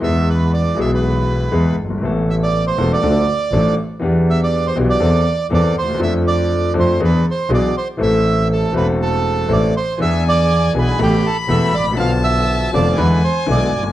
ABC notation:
X:1
M:4/4
L:1/16
Q:1/4=120
K:Am
V:1 name="Violin"
z16 | z16 | z16 | z16 |
z16 | ^g8 b8 | a8 ^g8 |]
V:2 name="Bandoneon"
e2 B2 d2 e B6- B z2 | z2 e d2 c2 d6- d z2 | z2 e d2 c2 d4- d d2 c2 | e2 d4 c2 B2 c2 d2 c2 |
e4 A2 B2 A4 d2 c2 | e2 d4 B2 G2 A2 e2 d2 | f2 e4 d2 B2 c2 d3 z |]
V:3 name="Grand piano" clef=bass
[E,,E,^G,B,^G]6 [B,,,B,,E,G,B,G]6 [E,,E,G,B,G]2 z/2 ^F,,,/2 =G,,,/2 ^G,,,/2 | [A,,,A,,E,A,B,A]6 [E,,,E,,E,A,B,A]2 [D,,D,F,A,DA]2 z2 [A,,,A,,F,A,DA]2 z2 | [E,,E,B,DG]6 [B,,,B,,E,B,DG]2 [E,,E,B,CA]2 z2 [E,,E,B,CA]2 z/2 D,,/2 ^D,,/2 E,,/2 | [F,,F,A,DA]6 [F,,F,A,DA]2 [E,,E,B,D^G]2 z2 [B,,,B,,E,B,DG]2 z2 |
[A,,,A,,E,A,CA]6 [E,,,E,,E,A,CA]6 [A,,,A,,E,A,CA]2 z2 | [E,,E,B,D^G]6 [B,,,B,,E,B,DG]2 [A,,,A,,E,A,B,A]2 z2 [E,,,E,,E,A,B,A]2 z/2 ^G,,,/2 A,,,/2 _B,,,/2 | [B,,,B,,D,F,B,F]6 [F,,,F,,D,F,B,F]2 [E,,D,E,^G,B,E]2 z2 [B,,,B,,D,G,B,E]2 z/2 ^F,,,/2 =G,,,/2 z/2 |]
V:4 name="Double bass" clef=bass
E,,6 B,,,6 E,,2 G,,,2 | A,,,6 E,,,2 D,,2 z2 A,,,2 z2 | E,,6 B,,,2 E,,2 z2 E,,2 ^D,,2 | F,,6 F,,2 E,,2 z2 B,,,2 z2 |
A,,,6 E,,,6 A,,,2 z2 | E,,6 B,,,2 A,,,2 z2 E,,,2 A,,,2 | B,,,6 F,,,2 E,,2 z2 B,,,2 G,,,2 |]